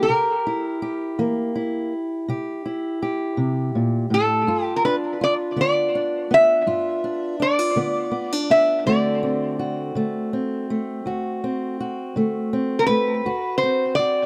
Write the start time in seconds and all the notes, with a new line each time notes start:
0.03 A#4
0.08 C3 G4
0.47 E4
0.82 G4
1.19 E3 A#3
1.55 E4
2.28 C3 G4
2.66 E4
3.02 G4
3.37 C3
3.75 A#2
4.10 A2 A4
4.47 G2 F4
4.64 G4
4.76 A#4
4.85 D4 B4
5.21 F4 D5
5.56 D3 B3
5.61 D5
5.95 D4
6.31 B3 E5
6.67 G2 F4
7.04 D4
7.40 D4 D5
7.59 F4
7.76 D3 B3
8.11 B3
8.32 D4
8.50 B3 E5
8.86 D2 D3 A3 C4 F#4 D5
9.23 C4
9.59 F#4
9.95 D3 A3
10.33 C4
10.70 A3
11.06 D2 F#4
11.44 C4
11.80 F#4
12.16 D3 A3
12.53 C4
12.79 A#4
12.87 A3 B4
13.26 D2 F#4
13.58 C5
13.63 C4
13.95 D5
13.99 F#4